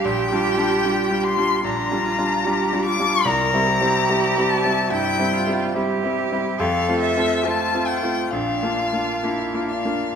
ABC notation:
X:1
M:4/4
L:1/8
Q:1/4=72
K:Cmix
V:1 name="Violin"
g3 c' b3 d' | b3 a g2 z2 | f e a g f3 f |]
V:2 name="Cello"
G4 D F G F | B G3 E F G2 | A2 F2 D F E D |]
V:3 name="Grand piano"
(3B,,, [G,DF] [G,DF] (3[G,DF] [G,DF] [G,DF] (3B,,, [G,DF] [G,DF] (3[G,DF] [G,DF] [G,DF] | (3C,, [G,CE] [G,CE] (3[G,CE] [G,CE] [G,CE] (3G,, [G,CE] [G,CE] (3[G,CE] [G,CE] [G,CE] | (3F,, [A,CF] [A,CF] (3[A,CF] [A,CF] [A,CF] (3B,,, [B,DF] [B,DF] (3[B,DF] [B,DF] [B,DF] |]